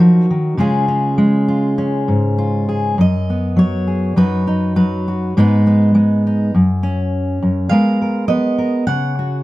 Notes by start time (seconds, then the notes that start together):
Already playing: F#3 D#4 A#4
0.00 F3 F#4
0.30 D#3
0.57 C#3 G#3 C#4 F4 G#4
0.88 C#4
1.18 G#3
1.48 F4
1.78 C#4
2.08 G#2
2.38 F4
2.69 G#4
2.98 F#2 D#5
3.30 B3
3.57 F#3 C#5
3.87 G#4
4.16 F#2 F#3 D#4 F#4 B4
4.47 D#4
4.76 F#3 B4
5.08 F#4
5.37 G#2 G#3 B3 D#4 B4
5.67 B3
5.95 G#3
6.27 D#4
6.55 F#2
6.83 C#4
7.42 F#2
7.69 G#3 B3 A#4 F5
8.02 A#4
8.28 B3 D#5
8.58 A#4
8.87 C#3 F#5
9.19 F#4